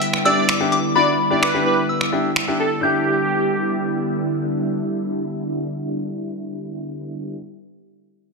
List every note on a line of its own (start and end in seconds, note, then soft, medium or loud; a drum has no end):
0.00 2.79 D3 medium
0.00 2.79 G3 medium
0.00 2.79 B3 medium
0.00 2.79 E4 medium
0.00 0.27 G5 medium
0.00 closed hi-hat medium
0.14 finger snap medium
0.25 0.41 D4 medium
0.25 0.41 E4 medium
0.25 0.41 G4 medium
0.25 0.46 D5 medium
0.25 0.47 E6 loud
0.25 closed hi-hat soft
0.49 0.71 D6 loud
0.49 finger snap loud
0.49 closed hi-hat medium
0.60 0.76 D4 medium
0.60 0.76 E4 medium
0.60 0.76 G4 medium
0.72 0.96 D6 medium
0.72 closed hi-hat soft
0.95 1.11 D4 medium
0.95 1.11 E4 medium
0.95 1.12 F#4 medium
0.95 1.06 D5 loud
0.95 1.44 B5 medium
1.30 1.41 D4 medium
1.30 1.41 E4 medium
1.30 1.41 G4 medium
1.30 1.41 D5 medium
1.42 1.63 B4 medium
1.42 1.86 D6 medium
1.42 finger snap loud
1.54 1.81 D4 medium
1.54 1.81 E4 medium
1.54 1.81 G4 medium
1.66 1.76 B4 medium
1.89 2.56 E6 medium
2.01 finger snap medium
2.12 2.28 D4 medium
2.12 2.29 E4 medium
2.12 2.29 G4 medium
2.36 finger snap loud
2.48 2.64 D4 medium
2.48 2.64 E4 medium
2.48 2.64 G4 medium
2.59 2.70 A4 medium
2.81 7.34 D3 medium
2.81 7.34 G3 medium
2.81 7.34 B3 medium
2.81 7.33 D4 medium
2.81 7.35 E4 medium
2.81 7.34 E4 medium
2.81 4.20 G4 medium
2.81 7.37 G4 medium
2.81 7.35 G6 medium